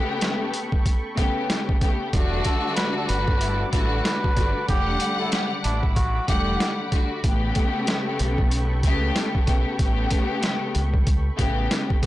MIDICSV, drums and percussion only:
0, 0, Header, 1, 2, 480
1, 0, Start_track
1, 0, Tempo, 638298
1, 1605, Time_signature, 4, 2, 24, 8
1, 9070, End_track
2, 0, Start_track
2, 0, Title_t, "Drums"
2, 161, Note_on_c, 9, 42, 90
2, 168, Note_on_c, 9, 37, 97
2, 168, Note_on_c, 9, 38, 122
2, 236, Note_off_c, 9, 42, 0
2, 243, Note_off_c, 9, 37, 0
2, 243, Note_off_c, 9, 38, 0
2, 403, Note_on_c, 9, 42, 65
2, 478, Note_off_c, 9, 42, 0
2, 544, Note_on_c, 9, 36, 97
2, 619, Note_off_c, 9, 36, 0
2, 644, Note_on_c, 9, 36, 110
2, 644, Note_on_c, 9, 42, 93
2, 719, Note_off_c, 9, 36, 0
2, 719, Note_off_c, 9, 42, 0
2, 884, Note_on_c, 9, 36, 83
2, 884, Note_on_c, 9, 42, 81
2, 959, Note_off_c, 9, 36, 0
2, 959, Note_off_c, 9, 42, 0
2, 1126, Note_on_c, 9, 37, 91
2, 1126, Note_on_c, 9, 38, 112
2, 1127, Note_on_c, 9, 42, 101
2, 1202, Note_off_c, 9, 37, 0
2, 1202, Note_off_c, 9, 38, 0
2, 1203, Note_off_c, 9, 42, 0
2, 1271, Note_on_c, 9, 36, 100
2, 1346, Note_off_c, 9, 36, 0
2, 1364, Note_on_c, 9, 42, 75
2, 1365, Note_on_c, 9, 36, 102
2, 1439, Note_off_c, 9, 42, 0
2, 1440, Note_off_c, 9, 36, 0
2, 1604, Note_on_c, 9, 36, 126
2, 1604, Note_on_c, 9, 42, 78
2, 1679, Note_off_c, 9, 36, 0
2, 1679, Note_off_c, 9, 42, 0
2, 1839, Note_on_c, 9, 42, 77
2, 1845, Note_on_c, 9, 36, 89
2, 1914, Note_off_c, 9, 42, 0
2, 1921, Note_off_c, 9, 36, 0
2, 2080, Note_on_c, 9, 42, 88
2, 2087, Note_on_c, 9, 37, 100
2, 2087, Note_on_c, 9, 38, 118
2, 2155, Note_off_c, 9, 42, 0
2, 2162, Note_off_c, 9, 37, 0
2, 2162, Note_off_c, 9, 38, 0
2, 2322, Note_on_c, 9, 42, 64
2, 2397, Note_off_c, 9, 42, 0
2, 2464, Note_on_c, 9, 36, 98
2, 2539, Note_off_c, 9, 36, 0
2, 2563, Note_on_c, 9, 42, 91
2, 2638, Note_off_c, 9, 42, 0
2, 2803, Note_on_c, 9, 42, 81
2, 2804, Note_on_c, 9, 36, 86
2, 2878, Note_off_c, 9, 42, 0
2, 2880, Note_off_c, 9, 36, 0
2, 3046, Note_on_c, 9, 37, 95
2, 3046, Note_on_c, 9, 38, 117
2, 3047, Note_on_c, 9, 42, 100
2, 3121, Note_off_c, 9, 37, 0
2, 3121, Note_off_c, 9, 38, 0
2, 3122, Note_off_c, 9, 42, 0
2, 3191, Note_on_c, 9, 36, 99
2, 3266, Note_off_c, 9, 36, 0
2, 3283, Note_on_c, 9, 42, 73
2, 3285, Note_on_c, 9, 36, 101
2, 3358, Note_off_c, 9, 42, 0
2, 3360, Note_off_c, 9, 36, 0
2, 3523, Note_on_c, 9, 42, 79
2, 3525, Note_on_c, 9, 36, 126
2, 3598, Note_off_c, 9, 42, 0
2, 3600, Note_off_c, 9, 36, 0
2, 3759, Note_on_c, 9, 42, 78
2, 3834, Note_off_c, 9, 42, 0
2, 4000, Note_on_c, 9, 42, 88
2, 4008, Note_on_c, 9, 37, 99
2, 4008, Note_on_c, 9, 38, 119
2, 4075, Note_off_c, 9, 42, 0
2, 4083, Note_off_c, 9, 37, 0
2, 4083, Note_off_c, 9, 38, 0
2, 4243, Note_on_c, 9, 42, 65
2, 4318, Note_off_c, 9, 42, 0
2, 4385, Note_on_c, 9, 36, 98
2, 4460, Note_off_c, 9, 36, 0
2, 4484, Note_on_c, 9, 42, 95
2, 4485, Note_on_c, 9, 36, 106
2, 4559, Note_off_c, 9, 42, 0
2, 4560, Note_off_c, 9, 36, 0
2, 4724, Note_on_c, 9, 42, 80
2, 4725, Note_on_c, 9, 36, 85
2, 4799, Note_off_c, 9, 42, 0
2, 4800, Note_off_c, 9, 36, 0
2, 4966, Note_on_c, 9, 37, 91
2, 4966, Note_on_c, 9, 38, 116
2, 4967, Note_on_c, 9, 42, 105
2, 5041, Note_off_c, 9, 37, 0
2, 5042, Note_off_c, 9, 38, 0
2, 5042, Note_off_c, 9, 42, 0
2, 5204, Note_on_c, 9, 42, 73
2, 5206, Note_on_c, 9, 36, 105
2, 5279, Note_off_c, 9, 42, 0
2, 5281, Note_off_c, 9, 36, 0
2, 5443, Note_on_c, 9, 42, 78
2, 5444, Note_on_c, 9, 36, 127
2, 5519, Note_off_c, 9, 42, 0
2, 5520, Note_off_c, 9, 36, 0
2, 5678, Note_on_c, 9, 42, 77
2, 5686, Note_on_c, 9, 36, 93
2, 5754, Note_off_c, 9, 42, 0
2, 5761, Note_off_c, 9, 36, 0
2, 5920, Note_on_c, 9, 42, 91
2, 5927, Note_on_c, 9, 37, 96
2, 5927, Note_on_c, 9, 38, 123
2, 5995, Note_off_c, 9, 42, 0
2, 6003, Note_off_c, 9, 37, 0
2, 6003, Note_off_c, 9, 38, 0
2, 6162, Note_on_c, 9, 42, 66
2, 6237, Note_off_c, 9, 42, 0
2, 6304, Note_on_c, 9, 36, 100
2, 6379, Note_off_c, 9, 36, 0
2, 6402, Note_on_c, 9, 42, 91
2, 6478, Note_off_c, 9, 42, 0
2, 6643, Note_on_c, 9, 42, 82
2, 6644, Note_on_c, 9, 36, 83
2, 6718, Note_off_c, 9, 42, 0
2, 6719, Note_off_c, 9, 36, 0
2, 6886, Note_on_c, 9, 37, 93
2, 6886, Note_on_c, 9, 38, 118
2, 6887, Note_on_c, 9, 42, 102
2, 6961, Note_off_c, 9, 37, 0
2, 6961, Note_off_c, 9, 38, 0
2, 6962, Note_off_c, 9, 42, 0
2, 7031, Note_on_c, 9, 36, 97
2, 7106, Note_off_c, 9, 36, 0
2, 7124, Note_on_c, 9, 42, 73
2, 7125, Note_on_c, 9, 36, 104
2, 7199, Note_off_c, 9, 42, 0
2, 7201, Note_off_c, 9, 36, 0
2, 7363, Note_on_c, 9, 42, 80
2, 7364, Note_on_c, 9, 36, 127
2, 7439, Note_off_c, 9, 42, 0
2, 7440, Note_off_c, 9, 36, 0
2, 7599, Note_on_c, 9, 42, 74
2, 7606, Note_on_c, 9, 36, 91
2, 7674, Note_off_c, 9, 42, 0
2, 7681, Note_off_c, 9, 36, 0
2, 7840, Note_on_c, 9, 42, 92
2, 7848, Note_on_c, 9, 37, 100
2, 7848, Note_on_c, 9, 38, 119
2, 7915, Note_off_c, 9, 42, 0
2, 7923, Note_off_c, 9, 37, 0
2, 7923, Note_off_c, 9, 38, 0
2, 8082, Note_on_c, 9, 42, 63
2, 8157, Note_off_c, 9, 42, 0
2, 8224, Note_on_c, 9, 36, 96
2, 8299, Note_off_c, 9, 36, 0
2, 8323, Note_on_c, 9, 42, 93
2, 8324, Note_on_c, 9, 36, 108
2, 8398, Note_off_c, 9, 42, 0
2, 8399, Note_off_c, 9, 36, 0
2, 8563, Note_on_c, 9, 42, 81
2, 8565, Note_on_c, 9, 36, 83
2, 8639, Note_off_c, 9, 42, 0
2, 8640, Note_off_c, 9, 36, 0
2, 8806, Note_on_c, 9, 37, 91
2, 8806, Note_on_c, 9, 38, 115
2, 8807, Note_on_c, 9, 42, 101
2, 8881, Note_off_c, 9, 37, 0
2, 8881, Note_off_c, 9, 38, 0
2, 8882, Note_off_c, 9, 42, 0
2, 8951, Note_on_c, 9, 36, 98
2, 9026, Note_off_c, 9, 36, 0
2, 9045, Note_on_c, 9, 42, 73
2, 9046, Note_on_c, 9, 36, 99
2, 9070, Note_off_c, 9, 36, 0
2, 9070, Note_off_c, 9, 42, 0
2, 9070, End_track
0, 0, End_of_file